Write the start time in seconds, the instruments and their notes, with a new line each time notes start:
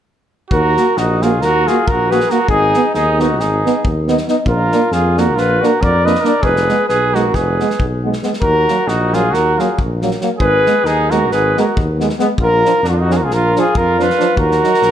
0.50 tuba D#2, trumpet F#4, flugelhorn A#4, kick
0.77 euphonium A#3, trombone F#4, snare
0.97 tuba A#1, trumpet D#4, flugelhorn F#4, snare
1.22 euphonium A#3, trumpet F4, trombone F#4, flugelhorn G#4, snare
1.41 tuba D#2, trumpet F#4, flugelhorn A#4, snare
1.67 euphonium A#3, trumpet F4, trombone F#4, flugelhorn G#4, snare
1.87 tuba A#1, trumpet F#4, flugelhorn A#4, kick
2.10 euphonium A#3, trombone F#4, trumpet G#4, flugelhorn B4, snare
2.20 snare
2.29 euphonium A#3, trumpet F#4, trombone F#4, flugelhorn A#4, snare
2.48 tuba G#1, trumpet D#4, flugelhorn G#4, kick
2.74 euphonium B3, trombone D#4, snare
2.94 tuba D#2, trumpet D#4, flugelhorn G#4, snare
3.18 euphonium B3, trombone D#4, trumpet D#4, flugelhorn F#4, snare
3.38 tuba G#1, trumpet D#4, flugelhorn G#4, snare
3.65 euphonium B3, trombone D#4, snare
3.85 tuba D#2, kick
4.08 euphonium B3, trombone D#4, snare
4.17 snare
4.28 euphonium B3, trombone D#4, snare
4.46 tuba A#1, trumpet F4, flugelhorn A#4, kick
4.72 euphonium A#3, trombone D4, snare
4.91 tuba F2, trumpet F4, flugelhorn G#4, snare
5.17 euphonium A#3, trombone D4, trumpet F#4, flugelhorn A#4, snare
5.35 tuba A#1, trumpet F4, flugelhorn B4, snare
5.60 euphonium A#3, trombone D4, trumpet F#4, snare
5.65 flugelhorn A#4
5.81 tuba F2, trumpet A#4, flugelhorn D5, kick
6.05 euphonium A#3, trombone D4, trumpet B4, flugelhorn D#5, snare
6.15 snare
6.21 euphonium A#3, trombone D4, trumpet A#4, snare
6.26 flugelhorn D5
6.42 tuba F1, trumpet G#4, flugelhorn B4, kick
6.56 snare
6.68 euphonium G#3, trombone B3, snare
6.88 tuba B1, trumpet G#4, flugelhorn B4, snare
7.13 euphonium G#3, trombone B3, trumpet F#4, flugelhorn A#4, snare
7.34 tuba F1, trumpet G#4, flugelhorn B4, kick, snare
7.60 euphonium G#3, trombone B3, snare
7.70 snare
7.80 tuba B1, kick
8.04 euphonium G#3, trombone B3
8.13 snare
8.23 euphonium G#3, trombone B3, snare
8.33 snare
8.41 tuba D#2, trumpet F#4, flugelhorn A#4, kick
8.68 euphonium F#3, trombone A#3, snare
8.87 tuba A#1, trumpet D#4, flugelhorn F#4, snare
9.13 euphonium F#3, trombone A#3, trumpet F4, flugelhorn G#4, snare
9.30 tuba D#2, trumpet F#4, flugelhorn A#4, snare
9.58 euphonium F#3, trombone A#3, trumpet F4, flugelhorn G#4, snare
9.79 tuba A#1, kick
10.02 euphonium F#3, trombone A#3, snare
10.11 snare
10.21 euphonium F#3, trombone A#3, snare
10.38 tuba G#1, trumpet G#4, flugelhorn B4, kick
10.66 euphonium G#3, trombone B3, snare
10.84 tuba D#2, trumpet D#4, flugelhorn G#4, snare
11.10 euphonium G#3, trombone B3, trumpet F#4, flugelhorn A#4, snare
11.30 tuba G#1, trumpet G#4, flugelhorn B4, snare
11.57 euphonium G#3, trombone B3, trumpet F#4, flugelhorn A#4, snare
11.76 tuba D#2, kick
11.99 euphonium G#3, trombone B3, snare
12.09 snare
12.19 euphonium G#3, trombone B3, snare
12.38 tuba A#1, trumpet F4, kick
12.43 flugelhorn A#4
12.64 euphonium F3, trombone D4, snare
12.83 tuba F2, trumpet D4, snare
12.88 trumpet D4, flugelhorn F4 F#4
12.99 trumpet D#4, flugelhorn F#4
13.09 euphonium F3, trombone D4, trumpet F4, flugelhorn G#4, snare
13.17 trumpet F#4, flugelhorn A#4
13.22 trumpet F4, flugelhorn G#4
13.29 tuba A#1, snare
13.33 trumpet F4, flugelhorn A#4
13.56 euphonium F3, trombone D4, trumpet F4, flugelhorn G#4, snare
13.75 tuba F2, trumpet F4, flugelhorn A#4, kick
13.98 euphonium F3, trombone D4, trumpet F4, flugelhorn B4, snare
14.10 snare
14.18 euphonium F3, trombone D4, snare
14.37 tuba D#2, trumpet F#4, flugelhorn A#4, kick
14.51 snare
14.63 euphonium F#3, trombone D#4, snare
14.74 snare
14.82 tuba A#1, snare